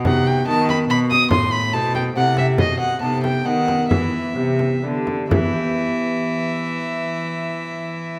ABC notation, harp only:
X:1
M:3/4
L:1/8
Q:1/4=132
K:Em
V:1 name="Harp"
[B,^DF]2 [B,DF]4 | z2 [EAc]2 [CEA]2- | [CEA]2 [B,^DA]2 [B,DA]2- | [B,^DA]2 [B,EG]2 [B,EG]2- |
[B,EG]6- | [B,EG]6 |]
V:2 name="Harp" clef=bass
z2 ^D,2 B,,2 | A,,4 C,2 | z2 C,2 ^D,2 | E,2 C,2 D,2 |
[E,B,EGe]6- | [E,B,EGe]6 |]